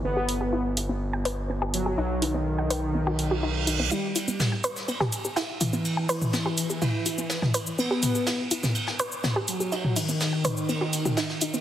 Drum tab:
RD |----------------|----------------|xxx-x---x-x-x-x-|x---x-x-x-x-x-xx|
HH |--o---o---o---o-|--o---o---o---o-|--o---o---o---o-|--o---o---o---o-|
SH |----------------|----------------|x-xxx-xxx-xxx-xx|x-xxx-xxx-xxx-xx|
SD |----------------|----------------|----o--o-o--o---|----o-------oo--|
T2 |----------------|----------------|----o----o----o-|---o----o----o--|

RD |xxx-x-x-x---x-x-|x---x---x-x-x-xx|
HH |--o---o---o---o-|--o---o---o---o-|
SH |x-xxx-xxx-xxx-xx|x-xxx-xxx-xxx-xx|
SD |----o--o-o--o---|----o-------oo--|
T2 |--o----o----o---|-o----o----o----|